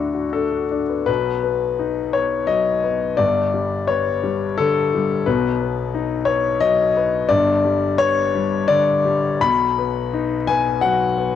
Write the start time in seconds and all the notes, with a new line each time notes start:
Already playing: D2 D4 E4 F#4 A4
0.14 F#4
0.33 D4 A4
0.52 F#4
0.71 D4
0.89 B3
1.06 B1 B2 B4
1.43 B3
1.79 D#4
2.13 B3 C#5
2.47 F#3 D#5
2.83 B3
3.17 G1 G2 D5
3.54 G3
3.88 B3 C#5
4.23 G3
4.58 D3 A4
4.95 G3
5.26 B1 B2 B4
5.61 B3
5.95 D#4
6.25 B3 C#5
6.61 F#3 D#5
6.97 B3
7.29 G1 G2 D5
7.65 G3
7.99 B3 C#5
8.35 G3
8.68 D3 D5
9.05 G3
9.41 B1 B2 B5
9.79 B3
10.13 D#4
10.47 B3 G#5
10.81 F#3 F#5
11.18 B3